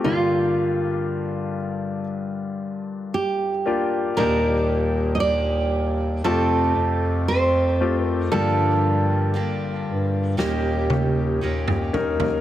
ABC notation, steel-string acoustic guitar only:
X:1
M:4/4
L:1/8
Q:1/4=58
K:Gm
V:1 name="Steel-string acoustic guitar"
z8 | [E,G,B,DG]2 [G,B,DG]2 [F,A,CFG]2 [A,CFG]2 | [G,,F,G,B,DG]2 [F,B,DG]2 [E,G,B,_DGB]2 [B,DGB]2 |]